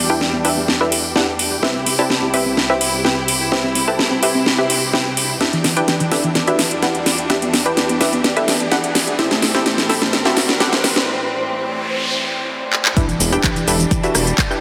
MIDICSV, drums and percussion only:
0, 0, Header, 1, 2, 480
1, 0, Start_track
1, 0, Key_signature, 1, "minor"
1, 0, Tempo, 472441
1, 1655, Time_signature, 4, 2, 24, 8
1, 14839, End_track
2, 0, Start_track
2, 0, Title_t, "Drums"
2, 214, Note_on_c, 9, 38, 51
2, 316, Note_off_c, 9, 38, 0
2, 454, Note_on_c, 9, 46, 100
2, 556, Note_off_c, 9, 46, 0
2, 694, Note_on_c, 9, 38, 54
2, 796, Note_off_c, 9, 38, 0
2, 934, Note_on_c, 9, 46, 101
2, 1036, Note_off_c, 9, 46, 0
2, 1175, Note_on_c, 9, 38, 54
2, 1277, Note_off_c, 9, 38, 0
2, 1414, Note_on_c, 9, 46, 102
2, 1516, Note_off_c, 9, 46, 0
2, 1654, Note_on_c, 9, 38, 58
2, 1756, Note_off_c, 9, 38, 0
2, 1894, Note_on_c, 9, 46, 103
2, 1995, Note_off_c, 9, 46, 0
2, 2135, Note_on_c, 9, 38, 58
2, 2236, Note_off_c, 9, 38, 0
2, 2374, Note_on_c, 9, 46, 101
2, 2475, Note_off_c, 9, 46, 0
2, 2615, Note_on_c, 9, 38, 58
2, 2716, Note_off_c, 9, 38, 0
2, 2854, Note_on_c, 9, 46, 105
2, 2955, Note_off_c, 9, 46, 0
2, 3095, Note_on_c, 9, 38, 59
2, 3196, Note_off_c, 9, 38, 0
2, 3334, Note_on_c, 9, 46, 107
2, 3436, Note_off_c, 9, 46, 0
2, 3575, Note_on_c, 9, 38, 64
2, 3677, Note_off_c, 9, 38, 0
2, 3814, Note_on_c, 9, 46, 107
2, 3916, Note_off_c, 9, 46, 0
2, 4054, Note_on_c, 9, 38, 66
2, 4156, Note_off_c, 9, 38, 0
2, 4294, Note_on_c, 9, 46, 103
2, 4395, Note_off_c, 9, 46, 0
2, 4535, Note_on_c, 9, 38, 67
2, 4636, Note_off_c, 9, 38, 0
2, 4773, Note_on_c, 9, 46, 105
2, 4875, Note_off_c, 9, 46, 0
2, 5014, Note_on_c, 9, 38, 69
2, 5116, Note_off_c, 9, 38, 0
2, 5254, Note_on_c, 9, 46, 106
2, 5356, Note_off_c, 9, 46, 0
2, 5493, Note_on_c, 9, 38, 73
2, 5493, Note_on_c, 9, 42, 61
2, 5595, Note_off_c, 9, 38, 0
2, 5595, Note_off_c, 9, 42, 0
2, 5619, Note_on_c, 9, 42, 37
2, 5720, Note_off_c, 9, 42, 0
2, 5733, Note_on_c, 9, 38, 72
2, 5733, Note_on_c, 9, 46, 100
2, 5835, Note_off_c, 9, 38, 0
2, 5835, Note_off_c, 9, 46, 0
2, 5858, Note_on_c, 9, 42, 38
2, 5960, Note_off_c, 9, 42, 0
2, 5974, Note_on_c, 9, 38, 76
2, 5974, Note_on_c, 9, 42, 63
2, 6075, Note_off_c, 9, 38, 0
2, 6075, Note_off_c, 9, 42, 0
2, 6099, Note_on_c, 9, 42, 38
2, 6200, Note_off_c, 9, 42, 0
2, 6213, Note_on_c, 9, 38, 72
2, 6213, Note_on_c, 9, 46, 100
2, 6315, Note_off_c, 9, 38, 0
2, 6315, Note_off_c, 9, 46, 0
2, 6338, Note_on_c, 9, 42, 37
2, 6440, Note_off_c, 9, 42, 0
2, 6454, Note_on_c, 9, 38, 75
2, 6454, Note_on_c, 9, 42, 61
2, 6555, Note_off_c, 9, 38, 0
2, 6555, Note_off_c, 9, 42, 0
2, 6578, Note_on_c, 9, 42, 37
2, 6680, Note_off_c, 9, 42, 0
2, 6694, Note_on_c, 9, 38, 78
2, 6694, Note_on_c, 9, 46, 103
2, 6795, Note_off_c, 9, 38, 0
2, 6795, Note_off_c, 9, 46, 0
2, 6818, Note_on_c, 9, 42, 38
2, 6920, Note_off_c, 9, 42, 0
2, 6934, Note_on_c, 9, 38, 77
2, 6934, Note_on_c, 9, 42, 60
2, 7036, Note_off_c, 9, 38, 0
2, 7036, Note_off_c, 9, 42, 0
2, 7059, Note_on_c, 9, 42, 37
2, 7161, Note_off_c, 9, 42, 0
2, 7174, Note_on_c, 9, 38, 78
2, 7174, Note_on_c, 9, 46, 101
2, 7276, Note_off_c, 9, 38, 0
2, 7276, Note_off_c, 9, 46, 0
2, 7299, Note_on_c, 9, 42, 37
2, 7401, Note_off_c, 9, 42, 0
2, 7415, Note_on_c, 9, 38, 82
2, 7415, Note_on_c, 9, 42, 65
2, 7517, Note_off_c, 9, 38, 0
2, 7517, Note_off_c, 9, 42, 0
2, 7540, Note_on_c, 9, 42, 38
2, 7642, Note_off_c, 9, 42, 0
2, 7656, Note_on_c, 9, 38, 80
2, 7656, Note_on_c, 9, 46, 99
2, 7758, Note_off_c, 9, 38, 0
2, 7758, Note_off_c, 9, 46, 0
2, 7781, Note_on_c, 9, 42, 39
2, 7883, Note_off_c, 9, 42, 0
2, 7895, Note_on_c, 9, 38, 84
2, 7895, Note_on_c, 9, 42, 65
2, 7997, Note_off_c, 9, 38, 0
2, 7997, Note_off_c, 9, 42, 0
2, 8020, Note_on_c, 9, 42, 39
2, 8122, Note_off_c, 9, 42, 0
2, 8135, Note_on_c, 9, 38, 81
2, 8135, Note_on_c, 9, 46, 96
2, 8237, Note_off_c, 9, 38, 0
2, 8237, Note_off_c, 9, 46, 0
2, 8260, Note_on_c, 9, 42, 39
2, 8361, Note_off_c, 9, 42, 0
2, 8375, Note_on_c, 9, 38, 86
2, 8375, Note_on_c, 9, 42, 64
2, 8476, Note_off_c, 9, 38, 0
2, 8476, Note_off_c, 9, 42, 0
2, 8500, Note_on_c, 9, 42, 38
2, 8602, Note_off_c, 9, 42, 0
2, 8615, Note_on_c, 9, 38, 89
2, 8615, Note_on_c, 9, 46, 102
2, 8717, Note_off_c, 9, 38, 0
2, 8717, Note_off_c, 9, 46, 0
2, 8740, Note_on_c, 9, 42, 39
2, 8842, Note_off_c, 9, 42, 0
2, 8855, Note_on_c, 9, 38, 86
2, 8855, Note_on_c, 9, 42, 63
2, 8956, Note_off_c, 9, 38, 0
2, 8956, Note_off_c, 9, 42, 0
2, 8980, Note_on_c, 9, 42, 39
2, 9081, Note_off_c, 9, 42, 0
2, 9095, Note_on_c, 9, 38, 90
2, 9095, Note_on_c, 9, 46, 103
2, 9196, Note_off_c, 9, 38, 0
2, 9196, Note_off_c, 9, 46, 0
2, 9220, Note_on_c, 9, 42, 39
2, 9321, Note_off_c, 9, 42, 0
2, 9335, Note_on_c, 9, 38, 90
2, 9335, Note_on_c, 9, 42, 67
2, 9437, Note_off_c, 9, 38, 0
2, 9437, Note_off_c, 9, 42, 0
2, 9460, Note_on_c, 9, 38, 82
2, 9460, Note_on_c, 9, 42, 41
2, 9561, Note_off_c, 9, 38, 0
2, 9561, Note_off_c, 9, 42, 0
2, 9575, Note_on_c, 9, 38, 92
2, 9575, Note_on_c, 9, 46, 98
2, 9676, Note_off_c, 9, 38, 0
2, 9676, Note_off_c, 9, 46, 0
2, 9699, Note_on_c, 9, 38, 84
2, 9699, Note_on_c, 9, 42, 41
2, 9800, Note_off_c, 9, 38, 0
2, 9800, Note_off_c, 9, 42, 0
2, 9814, Note_on_c, 9, 38, 93
2, 9814, Note_on_c, 9, 42, 70
2, 9915, Note_off_c, 9, 38, 0
2, 9915, Note_off_c, 9, 42, 0
2, 9939, Note_on_c, 9, 38, 84
2, 9939, Note_on_c, 9, 42, 41
2, 10040, Note_off_c, 9, 38, 0
2, 10040, Note_off_c, 9, 42, 0
2, 10053, Note_on_c, 9, 38, 92
2, 10053, Note_on_c, 9, 46, 98
2, 10155, Note_off_c, 9, 38, 0
2, 10155, Note_off_c, 9, 46, 0
2, 10178, Note_on_c, 9, 38, 87
2, 10178, Note_on_c, 9, 42, 42
2, 10280, Note_off_c, 9, 38, 0
2, 10280, Note_off_c, 9, 42, 0
2, 10293, Note_on_c, 9, 38, 96
2, 10293, Note_on_c, 9, 42, 66
2, 10395, Note_off_c, 9, 38, 0
2, 10395, Note_off_c, 9, 42, 0
2, 10418, Note_on_c, 9, 38, 83
2, 10418, Note_on_c, 9, 42, 40
2, 10520, Note_off_c, 9, 38, 0
2, 10520, Note_off_c, 9, 42, 0
2, 10533, Note_on_c, 9, 38, 99
2, 10533, Note_on_c, 9, 46, 101
2, 10634, Note_off_c, 9, 38, 0
2, 10634, Note_off_c, 9, 46, 0
2, 10658, Note_on_c, 9, 38, 85
2, 10658, Note_on_c, 9, 42, 42
2, 10759, Note_off_c, 9, 38, 0
2, 10759, Note_off_c, 9, 42, 0
2, 10773, Note_on_c, 9, 38, 99
2, 10773, Note_on_c, 9, 42, 68
2, 10875, Note_off_c, 9, 38, 0
2, 10875, Note_off_c, 9, 42, 0
2, 10898, Note_on_c, 9, 38, 89
2, 10898, Note_on_c, 9, 42, 41
2, 11000, Note_off_c, 9, 38, 0
2, 11000, Note_off_c, 9, 42, 0
2, 11013, Note_on_c, 9, 38, 99
2, 11013, Note_on_c, 9, 46, 99
2, 11115, Note_off_c, 9, 38, 0
2, 11115, Note_off_c, 9, 46, 0
2, 11137, Note_on_c, 9, 38, 91
2, 11137, Note_on_c, 9, 42, 42
2, 11239, Note_off_c, 9, 38, 0
2, 11239, Note_off_c, 9, 42, 0
2, 12934, Note_on_c, 9, 39, 87
2, 13035, Note_off_c, 9, 39, 0
2, 13059, Note_on_c, 9, 39, 101
2, 13160, Note_off_c, 9, 39, 0
2, 13174, Note_on_c, 9, 36, 122
2, 13175, Note_on_c, 9, 42, 98
2, 13178, Note_on_c, 9, 69, 44
2, 13275, Note_off_c, 9, 36, 0
2, 13276, Note_off_c, 9, 42, 0
2, 13280, Note_off_c, 9, 69, 0
2, 13299, Note_on_c, 9, 42, 42
2, 13302, Note_on_c, 9, 69, 23
2, 13400, Note_off_c, 9, 42, 0
2, 13404, Note_off_c, 9, 69, 0
2, 13414, Note_on_c, 9, 46, 105
2, 13418, Note_on_c, 9, 69, 77
2, 13516, Note_off_c, 9, 46, 0
2, 13520, Note_off_c, 9, 69, 0
2, 13539, Note_on_c, 9, 42, 43
2, 13543, Note_on_c, 9, 69, 34
2, 13641, Note_off_c, 9, 42, 0
2, 13644, Note_off_c, 9, 69, 0
2, 13654, Note_on_c, 9, 36, 106
2, 13654, Note_on_c, 9, 39, 127
2, 13655, Note_on_c, 9, 42, 96
2, 13658, Note_on_c, 9, 69, 46
2, 13756, Note_off_c, 9, 36, 0
2, 13756, Note_off_c, 9, 39, 0
2, 13756, Note_off_c, 9, 42, 0
2, 13760, Note_off_c, 9, 69, 0
2, 13780, Note_on_c, 9, 42, 42
2, 13784, Note_on_c, 9, 69, 23
2, 13882, Note_off_c, 9, 42, 0
2, 13885, Note_off_c, 9, 69, 0
2, 13895, Note_on_c, 9, 46, 105
2, 13899, Note_on_c, 9, 69, 76
2, 13997, Note_off_c, 9, 46, 0
2, 14000, Note_off_c, 9, 69, 0
2, 14020, Note_on_c, 9, 42, 41
2, 14024, Note_on_c, 9, 69, 35
2, 14122, Note_off_c, 9, 42, 0
2, 14125, Note_off_c, 9, 69, 0
2, 14134, Note_on_c, 9, 36, 116
2, 14135, Note_on_c, 9, 42, 95
2, 14138, Note_on_c, 9, 69, 45
2, 14236, Note_off_c, 9, 36, 0
2, 14236, Note_off_c, 9, 42, 0
2, 14240, Note_off_c, 9, 69, 0
2, 14260, Note_on_c, 9, 42, 42
2, 14263, Note_on_c, 9, 69, 21
2, 14361, Note_off_c, 9, 42, 0
2, 14365, Note_off_c, 9, 69, 0
2, 14375, Note_on_c, 9, 37, 81
2, 14375, Note_on_c, 9, 46, 107
2, 14378, Note_on_c, 9, 69, 77
2, 14476, Note_off_c, 9, 37, 0
2, 14476, Note_off_c, 9, 46, 0
2, 14480, Note_off_c, 9, 69, 0
2, 14499, Note_on_c, 9, 42, 41
2, 14503, Note_on_c, 9, 69, 33
2, 14601, Note_off_c, 9, 42, 0
2, 14604, Note_off_c, 9, 69, 0
2, 14614, Note_on_c, 9, 36, 105
2, 14614, Note_on_c, 9, 39, 123
2, 14615, Note_on_c, 9, 42, 94
2, 14618, Note_on_c, 9, 69, 44
2, 14716, Note_off_c, 9, 36, 0
2, 14716, Note_off_c, 9, 39, 0
2, 14716, Note_off_c, 9, 42, 0
2, 14720, Note_off_c, 9, 69, 0
2, 14743, Note_on_c, 9, 69, 23
2, 14839, Note_off_c, 9, 69, 0
2, 14839, End_track
0, 0, End_of_file